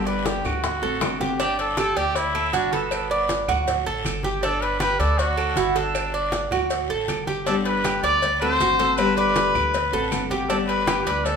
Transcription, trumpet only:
0.07 0.28 B4 medium
0.26 0.47 G4 medium
0.45 1.21 F#4 medium
1.41 1.58 G4 loud
1.60 1.77 A4 loud
1.79 1.99 A4 loud
1.97 2.17 G4 loud
2.16 2.55 E4 loud
2.54 2.74 D4 loud
2.72 3.48 B3 medium
4.43 4.63 A4 loud
4.62 4.80 B4 loud
4.80 5.01 B4 loud
5.00 5.20 A4 loud
5.18 5.59 F#4 loud
5.57 5.78 E4 medium
5.77 6.52 D4 medium
7.47 7.55 A4 loud
7.66 8.01 B4 loud
8.03 8.38 D5 loud
8.41 8.98 C5 loud
8.97 9.16 B4 loud
9.17 10.27 B4 loud
10.48 10.57 A4 loud
10.67 11.03 B4 loud
11.06 11.26 B4 loud
11.25 11.36 A4 loud

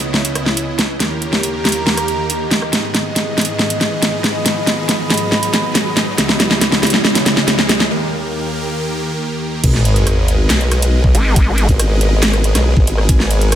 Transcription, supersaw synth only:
0.00 0.99 C#2 medium
0.00 0.99 C#3 medium
0.00 0.96 B3 medium
0.00 0.99 E4 medium
0.00 0.96 D#5 medium
1.00 2.71 D#2 medium
1.00 2.71 D#3 medium
1.00 2.71 A#3 medium
1.00 2.71 G4 medium
1.00 2.71 A#4 medium
2.73 6.15 G#2 medium
2.73 6.15 D#3 medium
2.73 7.87 B3 medium
2.73 6.15 G#4 medium
2.73 7.87 D#5 medium
6.18 7.89 C#2 medium
6.18 7.89 C#3 medium
6.18 7.89 E4 medium
7.91 9.62 D#2 medium
7.91 9.62 D#3 medium
7.91 9.62 A#3 medium
7.91 9.62 G4 medium
7.91 9.62 A#4 medium
9.64 13.55 G#3 medium
9.64 13.55 G#4 medium
9.64 13.55 A#4 medium
9.64 13.55 B4 medium
9.64 13.08 D#5 medium
13.09 13.55 G#5 medium

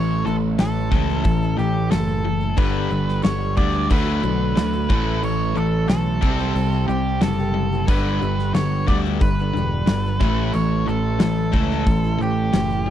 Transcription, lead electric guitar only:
0.00 0.24 C#5 loud
0.26 0.35 A4 medium
0.60 1.58 A4 medium
1.58 1.91 G4 medium
1.91 2.60 A4 medium
2.58 3.23 B4 medium
3.24 3.57 C#5 medium
3.57 3.91 D5 medium
3.91 5.24 B4 medium
5.24 5.58 C#5 loud
5.57 5.88 A4 medium
5.89 6.85 A4 medium
6.88 7.22 G4 medium
7.23 7.85 A4 medium
7.89 8.54 B4 medium
8.54 8.88 C#5 medium
8.88 8.97 D5 medium
9.21 10.54 B4 medium
10.55 10.89 C#5 medium
10.88 11.21 A4 medium
11.22 12.22 A4 medium
12.22 12.90 G4 medium

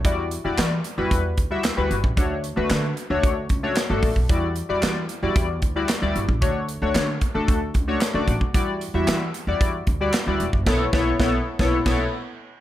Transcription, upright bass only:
0.05 0.35 E2 medium
0.45 0.55 E2 medium
0.58 0.78 E3 loud
0.98 1.08 E2 medium
1.11 1.38 E2 medium
1.38 1.58 D2 medium
1.77 1.88 D2 medium
1.91 2.01 G1 medium
2.04 2.14 A1 medium
2.17 2.48 D2 loud
2.57 2.67 D2 medium
2.70 2.91 D3 loud
3.10 3.20 D2 medium
3.23 3.44 D2 loud
3.50 3.70 C#2 medium
3.90 4.00 G1 medium
4.03 4.13 A1 medium
4.16 4.26 B1 medium
4.29 4.60 E2 medium
4.69 4.80 E2 medium
4.83 5.03 E3 medium
5.23 5.33 E2 medium
5.36 5.62 E2 medium
5.62 5.83 D2 medium
6.02 6.12 D2 medium
6.16 6.26 G1 medium
6.29 6.42 A1 medium
6.42 6.73 D2 medium
6.82 6.92 D2 medium
6.95 7.15 D3 loud
7.35 7.45 D2 medium
7.48 7.69 D2 medium
7.75 7.95 C#2 medium
8.14 8.25 C#2 medium
8.28 8.38 A1 loud
8.41 8.51 B1 medium
8.54 8.85 E2 medium
8.94 9.04 E2 medium
9.07 9.28 E3 medium
9.47 9.57 E2 medium
9.61 9.81 E2 medium
9.87 10.08 D2 medium
10.27 10.37 D2 medium
10.40 10.50 E1 medium
10.53 10.66 F#1 medium
10.66 10.85 B1 medium
10.93 11.11 B1 loud
11.19 11.38 B1 medium
11.59 11.78 B1 loud
11.86 12.04 B1 medium

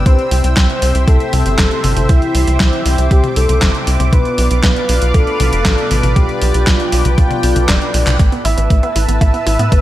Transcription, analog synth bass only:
0.06 0.17 C2 loud
0.31 0.42 C2 medium
0.44 0.55 C2 medium
0.57 0.68 C2 loud
0.82 0.93 C2 loud
0.95 1.06 C2 medium
1.08 1.19 C2 loud
1.33 1.44 C2 medium
1.46 1.57 G1 medium
1.58 1.69 G1 loud
1.84 1.95 G1 medium
1.97 2.08 G1 medium
2.09 2.20 C2 loud
2.35 2.46 C2 medium
2.48 2.58 C2 medium
2.60 2.71 C2 loud
2.86 2.97 C2 medium
2.98 3.09 C2 medium
3.11 3.22 C2 loud
3.36 3.47 C2 medium
3.49 3.60 C2 medium
3.62 3.73 G1 loud
3.87 3.98 C2 medium
4.00 4.11 C2 medium
4.13 4.24 B1 loud
4.38 4.49 B1 loud
4.51 4.62 B1 medium
4.64 4.74 B1 loud
4.89 5.00 B1 medium
5.02 5.13 B1 medium
5.14 5.25 B1 loud
5.40 5.51 B1 medium
5.53 5.64 F1 medium
5.65 5.76 A1 loud
5.91 6.02 A1 medium
6.04 6.15 A1 medium
6.16 6.27 B1 loud
6.42 6.53 B1 loud
6.55 6.65 B1 medium
6.67 6.78 B1 loud
6.93 7.03 B1 medium
7.05 7.16 B1 medium
7.18 7.29 B1 loud
7.43 7.54 B1 medium
7.56 7.67 B1 medium
7.69 7.80 F1 loud
7.94 8.05 B1 medium
8.07 8.18 B1 medium
8.20 8.30 A1 loud
8.45 8.56 A1 medium
8.58 8.69 A1 medium
8.70 8.81 A1 loud
8.96 9.07 A1 loud
9.08 9.19 A1 medium
9.21 9.32 A1 loud
9.47 9.58 A1 medium
9.59 9.70 A2 medium
9.72 9.81 G1 loud

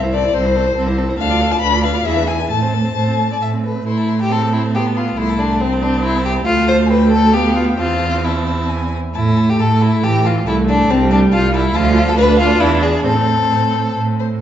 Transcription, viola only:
0.03 0.15 E4 soft
0.14 0.26 C4 soft
0.24 0.34 E4 soft
0.35 0.47 C4 soft
0.46 0.58 E4 soft
0.56 0.68 C4 soft
0.67 0.76 E4 soft
0.77 0.88 C4 medium
0.87 1.00 E4 soft
0.98 1.10 C4 soft
1.09 1.18 E4 soft
1.19 1.31 D4 medium
1.30 1.42 F4 soft
1.40 1.53 D4 medium
1.51 1.62 F4 soft
1.63 1.75 D4 medium
1.74 1.86 F4 soft
1.84 1.96 D4 medium
1.95 2.06 F4 soft
2.07 2.19 E4 soft
2.18 2.30 D4 soft
2.29 2.41 E4 soft
2.40 2.51 D4 soft
2.51 2.63 A3 soft
2.62 2.75 C4 soft
2.73 2.86 A3 soft
2.84 2.95 C4 soft
2.96 3.09 A3 soft
3.08 3.20 C4 soft
3.19 3.31 A3 soft
3.30 3.41 C4 soft
3.41 3.55 A3 soft
3.53 3.66 C4 soft
3.64 3.77 A3 soft
3.75 3.85 C4 soft
3.86 4.31 A3 soft
4.30 4.76 C4 medium
4.75 5.18 B3 medium
5.18 5.62 A3 soft
5.60 6.46 C4 medium
6.47 7.36 A3 medium
7.34 7.79 B3 medium
7.79 8.90 C4 medium
9.15 10.05 A3 medium
10.03 10.46 E3 medium
10.46 10.91 A3 medium
10.90 11.74 G3 medium
11.75 12.17 F3 medium
12.17 13.06 D4 medium
13.04 14.19 C4 medium

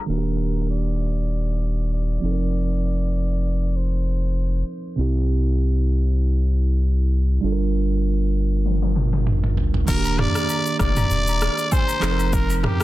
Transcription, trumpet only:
0.09 0.66 A#4 medium
0.70 1.89 D5 loud
1.93 3.78 D5 loud
3.76 4.68 C5 medium
9.88 10.20 A#4 loud
10.19 10.80 D5 loud
10.80 11.74 D5 loud
11.72 12.35 C5 loud
12.33 12.57 A#4 loud
12.57 12.65 A#4 medium
12.64 12.84 G4 loud

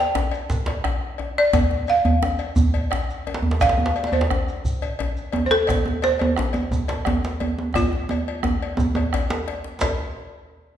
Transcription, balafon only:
0.00 0.98 G5 loud
1.38 1.91 D5 loud
1.90 3.58 F5 loud
3.61 4.08 F5 loud
4.07 4.13 D5 medium
4.13 4.78 C5 medium
5.46 5.52 C5 medium
5.51 5.99 A4 loud
6.04 7.80 C5 loud
7.76 9.43 F4 medium

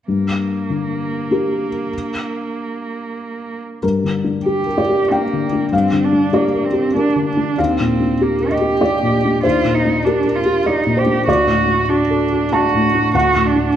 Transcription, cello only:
0.08 3.58 A#3 soft
4.46 5.13 G4 soft
5.11 5.73 A#3 soft
5.73 6.06 C4 soft
6.04 6.36 D4 soft
6.34 6.66 A#3 soft
6.65 6.95 C4 soft
6.96 7.26 D4 soft
7.27 7.61 D4 soft
7.59 8.24 C4 soft
8.22 8.53 A#3 soft
8.52 9.43 G4 medium
9.44 9.76 F4 soft
9.75 10.06 D#4 soft
10.04 10.37 D4 soft
10.36 10.68 F4 soft
10.66 10.99 D#4 soft
10.98 11.27 G4 medium
11.28 11.91 F#4 medium
11.89 12.55 D4 soft
12.53 13.14 F#4 medium
13.15 13.47 F#4 medium
13.46 13.76 D4 soft

